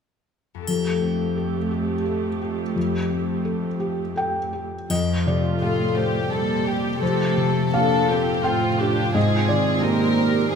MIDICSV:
0, 0, Header, 1, 7, 480
1, 0, Start_track
1, 0, Tempo, 701754
1, 454, Time_signature, 3, 2, 24, 8
1, 2848, Tempo, 715137
1, 5728, Tempo, 690449
1, 7186, End_track
2, 0, Start_track
2, 0, Title_t, "Violin section"
2, 0, Program_c, 0, 48
2, 3823, Note_on_c, 0, 65, 36
2, 4042, Note_off_c, 0, 65, 0
2, 4053, Note_on_c, 0, 67, 34
2, 4292, Note_off_c, 0, 67, 0
2, 4295, Note_on_c, 0, 69, 39
2, 4530, Note_off_c, 0, 69, 0
2, 4532, Note_on_c, 0, 67, 35
2, 4756, Note_on_c, 0, 69, 38
2, 4765, Note_off_c, 0, 67, 0
2, 5235, Note_off_c, 0, 69, 0
2, 5247, Note_on_c, 0, 69, 45
2, 5483, Note_off_c, 0, 69, 0
2, 5485, Note_on_c, 0, 67, 41
2, 5712, Note_on_c, 0, 65, 42
2, 5725, Note_off_c, 0, 67, 0
2, 5963, Note_on_c, 0, 67, 39
2, 5965, Note_off_c, 0, 65, 0
2, 6211, Note_off_c, 0, 67, 0
2, 6212, Note_on_c, 0, 68, 44
2, 6677, Note_off_c, 0, 68, 0
2, 6685, Note_on_c, 0, 70, 52
2, 7165, Note_off_c, 0, 70, 0
2, 7165, Note_on_c, 0, 68, 52
2, 7186, Note_off_c, 0, 68, 0
2, 7186, End_track
3, 0, Start_track
3, 0, Title_t, "Felt piano"
3, 0, Program_c, 1, 0
3, 465, Note_on_c, 1, 41, 29
3, 565, Control_c, 1, 64, 127
3, 697, Note_on_c, 1, 60, 25
3, 938, Note_on_c, 1, 69, 24
3, 1080, Note_off_c, 1, 60, 0
3, 1169, Note_on_c, 1, 67, 27
3, 1316, Note_off_c, 1, 69, 0
3, 1406, Note_on_c, 1, 69, 28
3, 1551, Note_off_c, 1, 67, 0
3, 1652, Note_on_c, 1, 67, 26
3, 1791, Note_off_c, 1, 69, 0
3, 1867, Note_off_c, 1, 41, 0
3, 1886, Note_on_c, 1, 41, 43
3, 1901, Control_c, 1, 64, 0
3, 2008, Control_c, 1, 64, 127
3, 2032, Note_off_c, 1, 67, 0
3, 2120, Note_on_c, 1, 60, 31
3, 2359, Note_on_c, 1, 69, 37
3, 2504, Note_off_c, 1, 60, 0
3, 2598, Note_on_c, 1, 67, 37
3, 2747, Note_off_c, 1, 69, 0
3, 2844, Note_on_c, 1, 69, 36
3, 2855, Note_on_c, 1, 79, 63
3, 2992, Note_off_c, 1, 67, 0
3, 3092, Note_on_c, 1, 67, 29
3, 3243, Note_off_c, 1, 69, 0
3, 3314, Note_off_c, 1, 41, 0
3, 3319, Note_off_c, 1, 79, 0
3, 3340, Note_off_c, 1, 67, 0
3, 3341, Note_on_c, 1, 41, 33
3, 3347, Note_on_c, 1, 75, 53
3, 3353, Control_c, 1, 64, 0
3, 3485, Control_c, 1, 64, 127
3, 3568, Note_off_c, 1, 75, 0
3, 3585, Note_on_c, 1, 48, 27
3, 3592, Note_on_c, 1, 74, 40
3, 3823, Note_on_c, 1, 67, 25
3, 3964, Note_off_c, 1, 48, 0
3, 4057, Note_on_c, 1, 72, 29
3, 4200, Note_off_c, 1, 67, 0
3, 4267, Note_off_c, 1, 41, 0
3, 4296, Note_on_c, 1, 69, 30
3, 4436, Note_off_c, 1, 72, 0
3, 4532, Note_on_c, 1, 67, 25
3, 4671, Note_off_c, 1, 69, 0
3, 4742, Note_off_c, 1, 74, 0
3, 4763, Note_on_c, 1, 41, 36
3, 4768, Note_on_c, 1, 72, 47
3, 4777, Control_c, 1, 64, 0
3, 4877, Control_c, 1, 64, 127
3, 4908, Note_off_c, 1, 67, 0
3, 5001, Note_on_c, 1, 48, 27
3, 5224, Note_off_c, 1, 72, 0
3, 5234, Note_off_c, 1, 41, 0
3, 5244, Note_on_c, 1, 67, 29
3, 5247, Note_off_c, 1, 48, 0
3, 5247, Note_on_c, 1, 77, 53
3, 5490, Note_on_c, 1, 72, 32
3, 5628, Note_off_c, 1, 67, 0
3, 5699, Note_off_c, 1, 77, 0
3, 5720, Note_on_c, 1, 79, 59
3, 5725, Note_on_c, 1, 69, 30
3, 5875, Note_off_c, 1, 72, 0
3, 5969, Note_on_c, 1, 67, 28
3, 6119, Note_off_c, 1, 69, 0
3, 6184, Note_off_c, 1, 79, 0
3, 6208, Note_on_c, 1, 44, 43
3, 6209, Note_on_c, 1, 75, 57
3, 6214, Note_off_c, 1, 67, 0
3, 6228, Control_c, 1, 64, 0
3, 6339, Control_c, 1, 64, 127
3, 6433, Note_off_c, 1, 75, 0
3, 6445, Note_on_c, 1, 74, 52
3, 6451, Note_on_c, 1, 51, 30
3, 6670, Note_off_c, 1, 44, 0
3, 6677, Note_on_c, 1, 63, 32
3, 6687, Note_off_c, 1, 51, 0
3, 6923, Note_on_c, 1, 72, 36
3, 7064, Note_off_c, 1, 63, 0
3, 7164, Note_on_c, 1, 68, 36
3, 7186, Note_off_c, 1, 68, 0
3, 7186, Note_off_c, 1, 72, 0
3, 7186, Note_off_c, 1, 74, 0
3, 7186, End_track
4, 0, Start_track
4, 0, Title_t, "Viola section"
4, 0, Program_c, 2, 48
4, 462, Note_on_c, 2, 67, 31
4, 466, Note_on_c, 2, 57, 33
4, 3181, Note_off_c, 2, 67, 0
4, 3183, Note_off_c, 2, 57, 0
4, 3337, Note_on_c, 2, 57, 36
4, 3338, Note_on_c, 2, 65, 38
4, 4264, Note_off_c, 2, 57, 0
4, 4265, Note_off_c, 2, 65, 0
4, 4289, Note_on_c, 2, 67, 37
4, 4292, Note_on_c, 2, 55, 34
4, 4760, Note_on_c, 2, 57, 34
4, 4762, Note_off_c, 2, 55, 0
4, 5237, Note_off_c, 2, 57, 0
4, 5246, Note_off_c, 2, 67, 0
4, 5250, Note_on_c, 2, 65, 34
4, 5252, Note_on_c, 2, 62, 40
4, 5485, Note_off_c, 2, 62, 0
4, 5496, Note_on_c, 2, 60, 37
4, 5722, Note_off_c, 2, 60, 0
4, 5724, Note_off_c, 2, 65, 0
4, 5730, Note_on_c, 2, 60, 40
4, 5732, Note_on_c, 2, 65, 42
4, 5969, Note_off_c, 2, 60, 0
4, 5976, Note_on_c, 2, 62, 40
4, 6217, Note_off_c, 2, 62, 0
4, 6220, Note_on_c, 2, 60, 42
4, 6672, Note_off_c, 2, 65, 0
4, 6695, Note_on_c, 2, 67, 42
4, 7165, Note_on_c, 2, 68, 45
4, 7168, Note_off_c, 2, 60, 0
4, 7170, Note_off_c, 2, 67, 0
4, 7186, Note_off_c, 2, 68, 0
4, 7186, End_track
5, 0, Start_track
5, 0, Title_t, "Harp"
5, 0, Program_c, 3, 46
5, 373, Note_on_c, 3, 41, 26
5, 392, Note_on_c, 3, 60, 24
5, 412, Note_on_c, 3, 67, 22
5, 425, Note_on_c, 3, 69, 24
5, 3037, Note_off_c, 3, 41, 0
5, 3056, Note_off_c, 3, 60, 0
5, 3076, Note_off_c, 3, 67, 0
5, 3088, Note_off_c, 3, 69, 0
5, 3341, Note_on_c, 3, 41, 34
5, 3504, Note_on_c, 3, 60, 27
5, 3662, Note_on_c, 3, 67, 28
5, 3817, Note_on_c, 3, 69, 29
5, 3972, Note_on_c, 3, 72, 28
5, 4121, Note_off_c, 3, 67, 0
5, 4129, Note_on_c, 3, 67, 28
5, 4281, Note_off_c, 3, 60, 0
5, 4289, Note_on_c, 3, 60, 30
5, 4449, Note_on_c, 3, 48, 26
5, 4598, Note_off_c, 3, 60, 0
5, 4606, Note_on_c, 3, 60, 27
5, 4757, Note_off_c, 3, 41, 0
5, 4765, Note_on_c, 3, 41, 37
5, 4915, Note_off_c, 3, 48, 0
5, 4923, Note_on_c, 3, 48, 27
5, 5081, Note_off_c, 3, 67, 0
5, 5089, Note_on_c, 3, 67, 30
5, 5244, Note_off_c, 3, 69, 0
5, 5252, Note_on_c, 3, 69, 34
5, 5404, Note_off_c, 3, 72, 0
5, 5412, Note_on_c, 3, 72, 33
5, 5560, Note_off_c, 3, 67, 0
5, 5568, Note_on_c, 3, 67, 30
5, 5718, Note_off_c, 3, 60, 0
5, 5726, Note_on_c, 3, 60, 32
5, 5880, Note_off_c, 3, 48, 0
5, 5888, Note_on_c, 3, 48, 30
5, 6040, Note_off_c, 3, 60, 0
5, 6048, Note_on_c, 3, 60, 31
5, 6207, Note_on_c, 3, 44, 42
5, 6233, Note_off_c, 3, 48, 0
5, 6235, Note_off_c, 3, 41, 0
5, 6235, Note_off_c, 3, 67, 0
5, 6236, Note_off_c, 3, 69, 0
5, 6358, Note_off_c, 3, 60, 0
5, 6366, Note_on_c, 3, 60, 36
5, 6683, Note_on_c, 3, 68, 37
5, 6828, Note_off_c, 3, 72, 0
5, 6836, Note_on_c, 3, 72, 40
5, 7154, Note_off_c, 3, 60, 0
5, 7162, Note_on_c, 3, 60, 38
5, 7186, Note_off_c, 3, 44, 0
5, 7186, Note_off_c, 3, 60, 0
5, 7186, Note_off_c, 3, 68, 0
5, 7186, Note_off_c, 3, 72, 0
5, 7186, End_track
6, 0, Start_track
6, 0, Title_t, "Cello section"
6, 0, Program_c, 4, 48
6, 456, Note_on_c, 4, 41, 30
6, 3178, Note_off_c, 4, 41, 0
6, 3341, Note_on_c, 4, 41, 39
6, 3794, Note_off_c, 4, 41, 0
6, 3819, Note_on_c, 4, 45, 37
6, 4284, Note_off_c, 4, 45, 0
6, 4287, Note_on_c, 4, 46, 33
6, 4751, Note_off_c, 4, 46, 0
6, 4753, Note_on_c, 4, 48, 40
6, 5233, Note_off_c, 4, 48, 0
6, 5236, Note_on_c, 4, 46, 34
6, 5710, Note_off_c, 4, 46, 0
6, 5713, Note_on_c, 4, 45, 40
6, 6198, Note_off_c, 4, 45, 0
6, 6206, Note_on_c, 4, 44, 45
6, 6674, Note_off_c, 4, 44, 0
6, 6682, Note_on_c, 4, 46, 44
6, 7154, Note_off_c, 4, 46, 0
6, 7159, Note_on_c, 4, 48, 44
6, 7186, Note_off_c, 4, 48, 0
6, 7186, End_track
7, 0, Start_track
7, 0, Title_t, "Drums"
7, 461, Note_on_c, 9, 81, 24
7, 530, Note_off_c, 9, 81, 0
7, 3342, Note_on_c, 9, 81, 26
7, 3409, Note_off_c, 9, 81, 0
7, 7186, End_track
0, 0, End_of_file